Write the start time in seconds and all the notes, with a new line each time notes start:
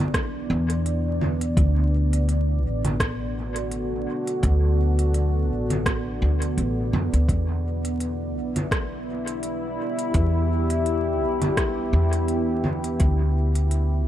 Already playing: B1 B3 D4 E4 G4 D5
0.14 kick, cross-stick, closed hi-hat
0.50 E2
0.70 closed hi-hat
0.86 closed hi-hat
1.21 low conga
1.41 closed hi-hat
1.57 D2, kick, closed hi-hat
2.07 A4
2.13 closed hi-hat
2.27 F#4, closed hi-hat
2.64 A1
2.85 closed hi-hat, low conga
3.00 kick, cross-stick, closed hi-hat
3.56 closed hi-hat
3.71 closed hi-hat
4.27 closed hi-hat
4.43 D2, kick, closed hi-hat
4.99 closed hi-hat
5.14 closed hi-hat
5.51 A1
5.70 closed hi-hat, low conga
5.86 kick, cross-stick, closed hi-hat
6.22 D2
6.42 closed hi-hat
6.57 A1, closed hi-hat
6.93 F#2, low conga
7.13 D2, closed hi-hat
7.29 E2, kick, closed hi-hat
7.49 E4
7.85 closed hi-hat
8.00 closed hi-hat
8.35 B1 G4
8.56 closed hi-hat, low conga
8.71 kick, cross-stick, closed hi-hat
9.27 closed hi-hat
9.43 closed hi-hat
9.99 closed hi-hat
10.14 E2, kick, closed hi-hat
10.70 closed hi-hat
10.86 closed hi-hat
11.22 B1
11.42 closed hi-hat, low conga
11.57 kick, cross-stick, closed hi-hat
11.93 E2
12.13 closed hi-hat
12.28 closed hi-hat
12.64 low conga
12.84 closed hi-hat
12.99 D2 B3, kick, closed hi-hat
13.26 F#4
13.55 closed hi-hat
13.71 closed hi-hat